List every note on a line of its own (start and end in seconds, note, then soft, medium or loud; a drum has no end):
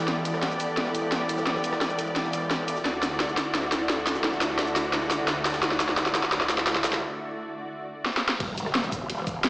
0.00 2.81 E3 medium
0.00 2.81 B3 medium
0.00 2.84 E4 medium
0.00 2.81 G4 medium
0.00 2.85 A4 medium
0.00 2.85 D5 medium
0.00 8.36 D5 medium
0.00 2.85 F#5 medium
0.08 0.59 E1 loud
0.08 snare medium
0.08 closed hi-hat medium
0.08 ride medium
0.25 closed hi-hat medium
0.25 ride medium
0.25 shaker medium
0.34 cross-stick soft
0.34 snare soft
0.43 snare loud
0.43 snare medium
0.43 closed hi-hat medium
0.43 ride medium
0.51 shaker soft
0.60 closed hi-hat medium
0.60 ride medium
0.60 shaker medium
0.77 1.37 E1 loud
0.77 snare medium
0.77 closed hi-hat medium
0.77 ride medium
0.86 snare soft
0.95 closed hi-hat medium
0.95 ride medium
0.95 shaker medium
1.12 snare medium
1.12 snare loud
1.12 closed hi-hat medium
1.12 ride medium
1.29 cross-stick soft
1.29 closed hi-hat medium
1.29 ride medium
1.29 shaker medium
1.37 1.63 D#1 loud
1.37 snare soft
1.37 shaker soft
1.47 snare medium
1.47 closed hi-hat medium
1.47 ride medium
1.55 snare soft
1.64 2.15 E1 medium
1.64 closed hi-hat medium
1.64 ride medium
1.64 shaker medium
1.73 cross-stick soft
1.73 snare medium
1.81 snare medium
1.81 snare loud
1.81 closed hi-hat medium
1.81 ride medium
1.90 ride soft
1.90 shaker soft
1.99 cross-stick soft
1.99 closed hi-hat medium
1.99 ride medium
1.99 shaker medium
2.07 ride soft
2.16 2.84 E1 loud
2.16 snare medium
2.16 closed hi-hat medium
2.16 ride medium
2.25 snare medium
2.33 closed hi-hat medium
2.33 ride medium
2.33 shaker medium
2.51 snare loud
2.51 snare medium
2.51 closed hi-hat medium
2.51 ride medium
2.68 closed hi-hat medium
2.68 ride medium
2.68 shaker medium
2.77 snare soft
2.77 shaker soft
2.85 3.36 D2 loud
2.85 8.36 D3 medium
2.85 8.36 A3 medium
2.85 7.02 E4 medium
2.85 8.36 F#4 medium
2.85 snare medium
2.85 closed hi-hat medium
2.85 ride medium
3.03 7.01 A4 medium
3.03 snare medium
3.03 closed hi-hat medium
3.03 ride medium
3.03 shaker medium
3.11 7.02 D5 medium
3.11 snare soft
3.20 snare loud
3.20 snare medium
3.20 closed hi-hat medium
3.20 ride medium
3.29 shaker soft
3.37 snare medium
3.37 closed hi-hat medium
3.37 ride medium
3.37 shaker medium
3.55 4.40 D2 loud
3.55 snare medium
3.55 closed hi-hat medium
3.55 ride medium
3.63 snare soft
3.72 snare medium
3.72 closed hi-hat medium
3.72 ride medium
3.72 shaker medium
3.89 snare loud
3.89 snare medium
3.89 closed hi-hat medium
3.89 ride medium
4.07 snare medium
4.07 closed hi-hat medium
4.07 ride medium
4.07 shaker medium
4.15 snare soft
4.15 shaker soft
4.21 6.20 F#5 loud
4.21 snare medium
4.21 closed hi-hat medium
4.21 ride medium
4.33 snare soft
4.41 5.01 D2 medium
4.41 snare medium
4.41 closed hi-hat medium
4.41 ride medium
4.41 shaker medium
4.50 snare medium
4.59 snare loud
4.59 snare medium
4.59 closed hi-hat medium
4.59 ride medium
4.67 ride soft
4.67 shaker soft
4.76 snare medium
4.76 closed hi-hat medium
4.76 ride medium
4.76 shaker medium
4.85 ride soft
4.93 snare medium
4.93 closed hi-hat medium
4.93 ride medium
5.01 5.27 C#2 medium
5.01 snare medium
5.11 snare medium
5.11 closed hi-hat loud
5.11 ride medium
5.11 shaker medium
5.28 5.61 D2 medium
5.28 snare medium
5.28 snare loud
5.28 closed hi-hat medium
5.28 ride medium
5.45 snare medium
5.45 snare loud
5.45 closed hi-hat loud
5.45 ride medium
5.45 shaker medium
5.50 snare loud
5.50 ride medium
5.54 snare loud
5.54 ride medium
5.54 shaker soft
5.63 6.13 D2 loud
5.63 snare medium
5.63 closed hi-hat medium
5.63 ride medium
5.71 snare medium
5.80 snare loud
5.80 closed hi-hat loud
5.80 ride medium
5.80 shaker medium
5.89 snare medium
5.89 snare soft
5.97 snare medium
5.97 snare loud
5.97 closed hi-hat medium
5.97 ride medium
6.06 snare medium
6.06 shaker soft
6.15 snare loud
6.15 closed hi-hat loud
6.15 ride medium
6.15 shaker medium
6.23 snare medium
6.32 6.81 D2 loud
6.32 snare loud
6.32 closed hi-hat medium
6.32 ride medium
6.41 snare soft
6.41 snare medium
6.49 snare loud
6.49 closed hi-hat loud
6.49 ride medium
6.49 shaker medium
6.58 snare medium
6.67 snare loud
6.67 closed hi-hat medium
6.67 ride medium
6.76 snare medium
6.81 7.02 C#2 loud
6.81 snare loud
6.81 closed hi-hat loud
6.81 ride medium
6.81 shaker medium
6.93 snare soft
6.93 snare medium
6.93 shaker soft
8.06 snare medium
8.17 snare medium
8.29 snare loud
8.40 8.56 E1 loud
8.40 kick loud
8.40 closed hi-hat loud
8.40 crash loud
8.40 ride medium
8.40 impact medium
8.58 9.08 E1 loud
8.58 closed hi-hat medium
8.58 ride medium
8.58 shaker medium
8.66 cross-stick medium
8.66 snare soft
8.75 snare loud
8.75 closed hi-hat medium
8.75 ride medium
8.84 closed hi-hat soft
8.84 shaker soft
8.92 kick loud
8.92 closed hi-hat medium
8.92 ride medium
8.92 shaker medium
9.10 9.49 E1 loud
9.10 closed hi-hat loud
9.10 ride medium
9.18 snare soft
9.27 kick loud
9.27 closed hi-hat medium
9.27 ride medium
9.27 shaker medium
9.44 snare loud
9.44 closed hi-hat loud
9.44 ride medium